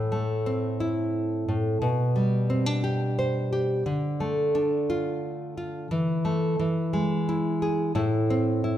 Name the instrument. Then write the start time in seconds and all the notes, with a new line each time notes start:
nylon-string guitar
Already playing: A2
0.12 A3
0.46 C4
0.80 E4
1.49 A2
1.82 B2
2.16 G3
2.50 C4
2.66 D4
2.84 G4
3.19 C5
3.53 G4
3.86 D3
4.20 A3
4.55 D4
4.90 F4
5.57 F4
5.91 E3
6.25 A3
6.60 E3
6.93 G#3
7.29 E4
7.62 G#4
7.95 A2 E4
8.30 C4
8.64 E4